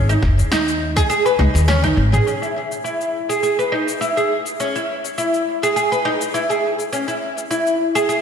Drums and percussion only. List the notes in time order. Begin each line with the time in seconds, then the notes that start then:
0.10 cabasa
0.22 kick, snare
0.39 cabasa
0.52 snare, cabasa
0.68 cabasa
0.97 kick, cabasa
1.11 cabasa
1.26 cabasa
1.39 high tom
1.55 snare, cabasa
1.68 snare, mid tom, cabasa
1.84 kick, mid tom, cabasa
2.13 mid tom, cabasa
2.27 cabasa
2.43 cabasa
2.72 cabasa
2.86 cabasa
3.01 cabasa
3.30 cabasa
3.43 cabasa
3.59 cabasa
3.88 cabasa
4.02 cabasa
4.17 cabasa
4.46 cabasa
4.60 cabasa
4.76 cabasa
5.05 cabasa
5.18 cabasa
5.34 cabasa
5.64 cabasa
5.77 cabasa
5.93 cabasa
6.22 cabasa
6.35 cabasa
6.51 cabasa
6.80 cabasa
6.93 cabasa
7.09 cabasa
7.38 cabasa
7.51 cabasa
7.67 cabasa
7.96 cabasa
8.10 cabasa